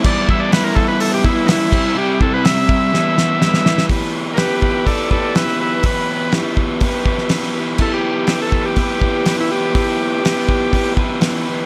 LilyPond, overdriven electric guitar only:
\new Staff \with { instrumentName = "Overdriven electric guitar" } { \time 4/4 \key e \minor \tempo 4 = 123 <e g b e'>8 <g b e'>8 <e g b e'>4. <g b e'>8 <e g b e'>8 <c g c' e'>8 | <c g c' e'>8 <g c' e'>8 <c g c' e'>4 <e g b e'>8 <g b e'>8 <e g b e'>8 <g b e'>8 | <e b e' g' b'>4 <b e' g' b'>4 <b e' g' b'>8 <e' g' b'>8 <e b e' g' b'>8 <e' g' b'>8 | <e b e' g' b'>4 <b e' g' b'>4 <b e' g' b'>8 <e' g' b'>8 <e b e' g' b'>8 <e' g' b'>8 |
<e b e' g' b'>4 <b e' g' b'>4 <b e' g' b'>8 <e' g' b'>8 <e b e' g' b'>8 <e' g' b'>8 | <e b e' g' b'>4 <b e' g' b'>4 <b e' g' b'>8 <e' g' b'>8 <e b e' g' b'>8 <e' g' b'>8 | }